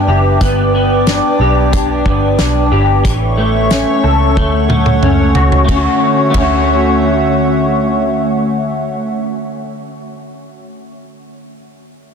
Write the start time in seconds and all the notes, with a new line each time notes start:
Already playing: B3 D4 B4 E5 G5 D6
0.08 F#1 G4
0.41 G1 B3 D5 D6, kick, closed hi-hat
0.75 B3
1.07 D4, snare, closed hi-hat
1.39 B1 G4
1.73 D4, kick, closed hi-hat
2.06 G1 B3, kick
2.38 B1 D4, snare, closed hi-hat
2.72 G1 G4
3.04 A1 E3 A4 C#5 E5 C#6, kick, closed hi-hat
3.37 A3
3.71 C#4, snare, closed hi-hat
4.04 C#2 A4
4.37 D2 A3 C#5 F#5, kick, high tom
4.69 D2 A3, mid tom
4.86 mid tom
5.03 C#2 C#4, mid tom
5.35 C#2 F#4, floor tom
5.52 floor tom
5.64 D3 A3 C#5 E5 F#5
5.69 D2 C#4, kick, ride
5.76 F#4
6.30 A3, ride
6.34 D2 C#4, kick
6.42 F#4